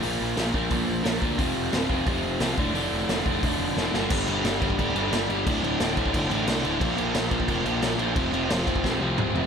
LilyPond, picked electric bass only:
\new Staff \with { instrumentName = "Picked electric bass" } { \clef bass \time 4/4 \key d \minor \tempo 4 = 177 bes,,8 bes,,8 bes,,8 bes,,8 bes,,8 bes,,8 bes,,8 d,8 | f,,8 f,,8 d,,8 f,,8 f,,8 f,,8 c,8 f,,8 | f,,8 f,,8 f,,8 f,,8 f,,8 f,,8 f,,8 g,,8 | g,,8 g,,8 g,,8 g,,8 d,,8 g,,8 g,,8 g,,8 |
d,,8 d,,8 d,,8 d,,8 g,,8 a,,8 c,8 d,,8 | bes,,8 bes,,8 bes,,8 bes,,8 f,,8 bes,,8 bes,,8 bes,,8 | f,,8 f,,8 f,,8 f,,8 bes,,8 c,8 d,,8 f,,8 | }